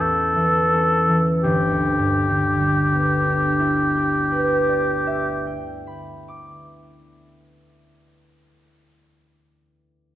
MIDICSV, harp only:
0, 0, Header, 1, 2, 480
1, 0, Start_track
1, 0, Key_signature, 1, "major"
1, 0, Tempo, 1442308
1, 480, Time_signature, 4, 2, 24, 8
1, 3379, End_track
2, 0, Start_track
2, 0, Title_t, "Harp"
2, 0, Program_c, 0, 46
2, 0, Note_on_c, 0, 40, 33
2, 0, Note_on_c, 0, 52, 31
2, 0, Note_on_c, 0, 61, 33
2, 0, Note_on_c, 0, 64, 32
2, 0, Note_on_c, 0, 67, 36
2, 115, Note_off_c, 0, 52, 0
2, 119, Note_on_c, 0, 52, 31
2, 239, Note_off_c, 0, 61, 0
2, 243, Note_on_c, 0, 61, 33
2, 357, Note_off_c, 0, 52, 0
2, 361, Note_on_c, 0, 52, 29
2, 479, Note_on_c, 0, 31, 41
2, 497, Note_off_c, 0, 40, 0
2, 500, Note_off_c, 0, 52, 0
2, 501, Note_off_c, 0, 61, 0
2, 566, Note_on_c, 0, 38, 37
2, 662, Note_on_c, 0, 43, 40
2, 763, Note_on_c, 0, 50, 36
2, 867, Note_on_c, 0, 55, 35
2, 972, Note_on_c, 0, 59, 31
2, 1087, Note_on_c, 0, 62, 38
2, 1181, Note_off_c, 0, 67, 0
2, 1193, Note_off_c, 0, 64, 0
2, 1197, Note_on_c, 0, 64, 36
2, 1317, Note_on_c, 0, 67, 35
2, 1438, Note_on_c, 0, 71, 34
2, 1560, Note_on_c, 0, 74, 30
2, 1687, Note_on_c, 0, 76, 31
2, 1820, Note_on_c, 0, 79, 31
2, 1838, Note_off_c, 0, 31, 0
2, 1926, Note_off_c, 0, 38, 0
2, 1954, Note_on_c, 0, 83, 29
2, 2021, Note_off_c, 0, 43, 0
2, 2091, Note_on_c, 0, 86, 29
2, 2122, Note_off_c, 0, 50, 0
2, 2226, Note_off_c, 0, 55, 0
2, 2332, Note_off_c, 0, 59, 0
2, 2446, Note_off_c, 0, 62, 0
2, 2556, Note_off_c, 0, 64, 0
2, 2676, Note_off_c, 0, 67, 0
2, 2797, Note_off_c, 0, 71, 0
2, 2890, Note_off_c, 0, 74, 0
2, 2890, Note_off_c, 0, 76, 0
2, 2890, Note_off_c, 0, 83, 0
2, 2890, Note_off_c, 0, 86, 0
2, 2891, Note_off_c, 0, 79, 0
2, 3379, End_track
0, 0, End_of_file